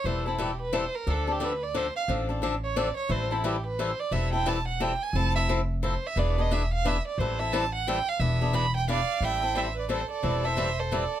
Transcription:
X:1
M:3/4
L:1/16
Q:"Swing" 1/4=177
K:Am
V:1 name="Violin"
c2 E2 G2 B2 c2 _B2 | A2 G2 B2 d2 c2 f2 | z6 ^c2 d2 c2 | c2 E2 G2 B2 c2 d2 |
e2 g2 a2 ^f2 g2 ^g2 | a2 e2 z4 c2 e2 | d2 ^d2 e2 f2 e2 =d2 | c2 e2 a2 ^f2 g2 =f2 |
e4 b2 g2 f4 | g4 e2 d2 c2 d2- | d2 e4 c2 d4 |]
V:2 name="Violin"
z12 | z12 | z12 | z12 |
z12 | z12 | z12 | z12 |
z8 d4 | e4 c2 B2 A2 A2- | A2 c4 A2 A4 |]
V:3 name="Steel-string acoustic guitar"
[E,G,CEA]2 [CEA]2 [E,G,CEA] z3 [E,G,CEA] z3 | [D,F,CDA]2 [CDA]2 [D,F,CDA] z3 [D,F,CDA] z3 | [D,F,CDA]2 [CDA]2 [D,F,CDA] z3 [D,F,CDA] z3 | [E,G,CEA]2 [CEA]2 [E,G,CEA] z3 [E,G,CEA] z3 |
[E,G,CEA]2 [CEA]2 [E,G,CEA] z3 [E,G,CEA] z3 | [F,CEA]2 [CEA]2 [F,CEA] z3 [F,CEA] z3 | [E,B,D^G]2 [B,DG]2 [E,B,DG] z3 [E,B,DG] z3 | [E,G,CEA]2 [CEA]2 [E,G,CEA] z3 [E,G,CEA] z3 |
[E,B,D^G]2 [B,DG]2 [E,B,DG] z3 [E,B,DG] z3 | [E,G,CEA]2 [CEA]2 [E,G,CEA] z3 [E,G,CEA] z3 | [E,G,CEA]2 [CEA]2 [E,G,CEA] z3 [E,G,CEA] z3 |]
V:4 name="Upright bass" clef=bass
E,,,12 | D,,12 | A,,,12 | A,,,12 |
E,,,12 | F,,,12 | E,,,12 | A,,,12 |
E,,,12 | A,,,12 | E,,,12 |]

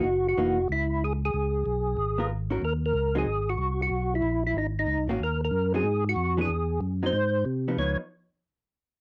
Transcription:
X:1
M:4/4
L:1/8
Q:"Swing" 1/4=186
K:Abdor
V:1 name="Tonewheel organ"
G G3 _F2 A A- | A6 z2 | B B2 A2 G2 G- | G =E2 E _E E2 z |
B B2 A2 G2 A- | A2 z =c3 z2 | d z6 z |]
V:2 name="Hollow-body jazz guitar"
z2 [_F,B,E] z4 z | z4 z [CFB] z [E,DGB] | z3 [G,=CE] z4 | z6 z [E,B,DG] |
z3 [G,=CE] z3 [_F,_C=DA] | z3 [G,=CE] z3 [F,_CE] | [F,CE] z6 z |]
V:3 name="Tonewheel organ" clef=bass
G,,,2 F,,,2 D,,4 | D,,2 C,,2 A,,,4 | E,,2 D,,2 A,,,2 =C,,2 | =B,,,2 _B,,,2 A,,,2 (3D,, =C,, A,,, |
E,,2 G,,2 A,,2 F,,2 | =E,,2 G,,2 A,,2 =C,2 | D,, z6 z |]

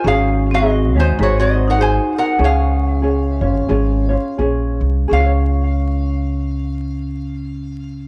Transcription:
X:1
M:4/4
L:1/16
Q:"Swing" 1/4=90
K:Db
V:1 name="Resonator guitar played with a steel bar"
[Af]3 [Ge]3 [Ec]2 [Gd] [Ge]2 [Bg] [ca]2 [Bg]2 | [Af]12 z4 | f16 |]
V:2 name="Ukulele"
[EGAd]4 [EGAd]2 [EGd]2 [EGAc]2 [EGc]2 [EGAc]4 | [DFAd]4 [DFAd]2 [DFd]2 [DFAd]2 [DFd]2 [DFAd]4 | [DFAd]16 |]
V:3 name="Vibraphone"
D3 C3 A,2 A, C2 E E2 E2 | D12 z4 | D16 |]
V:4 name="Upright bass" clef=bass
A,,,6 E,,2 A,,,8 | D,,6 A,,,2 A,,,4 B,,,2 C,,2 | D,,16 |]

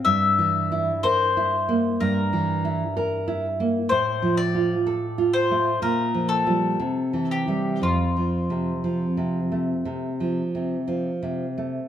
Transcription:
X:1
M:4/4
L:1/8
Q:1/4=61
K:F
V:1 name="Mandolin"
e2 c2 B3 z | c d2 c B A2 G | F6 z2 |]
V:2 name="Nylon-string guitar" clef=bass
(3G,, E, E (3B E B, (3G,, E, E (3B E B, | (3A,, F, F (3A F A, (3B,, F, [F,G,] (3C, E, [E,G,] | (3F,, F, C, (3F, C, A, (3C, F, C, (3F, C, A, |]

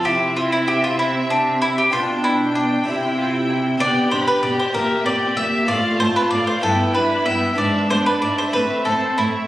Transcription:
X:1
M:6/8
L:1/16
Q:3/8=64
K:Cmix
V:1 name="Violin section"
e12 | g12 | [K:Gmix] g2 b2 g2 e2 g2 e2 | f2 a2 f2 g2 b2 g2 |
e2 d2 e2 e2 c2 e2 |]
V:2 name="Mandolin"
G2 F E G F E2 D2 E G | F2 E2 D2 z6 | [K:Gmix] d2 c B d c _B2 d2 e2 | d2 c B d c A2 B2 e2 |
d2 c B d c B2 A2 E2 |]
V:3 name="Violin section"
E6 C6 | D6 E2 F2 E2 | [K:Gmix] G12 | F6 E6 |
D6 C6 |]
V:4 name="Viola section"
C12 | D6 E6 | [K:Gmix] B,2 D2 B,2 _B,2 C2 B,2 | A,2 C2 A,2 B,2 D2 B,2 |
^G,2 B,2 G,2 A,2 C2 A,2 |]
V:5 name="Harpsichord"
[CE]12 | [DG]6 [EG]6 | [K:Gmix] [DG]6 [CE]6 | [A,CF]6 [B,DG]6 |
[B,E]6 [A,CE]6 |]
V:6 name="Harpsichord" clef=bass
C,12 | =B,,6 C,6 | [K:Gmix] B,,2 B,,2 B,,2 _B,,2 B,,2 B,,2 | A,,2 A,,2 A,,2 G,,2 G,,2 G,,2 |
^G,,2 G,,2 G,,2 A,,2 A,,2 A,,2 |]
V:7 name="Cello section" clef=bass
C,12 | =B,,6 C,6 | [K:Gmix] B,,2 B,,2 B,,2 _B,,2 B,,2 B,,2 | A,,2 A,,2 A,,2 G,,2 G,,2 G,,2 |
^G,,2 G,,2 G,,2 A,,2 A,,2 A,,2 |]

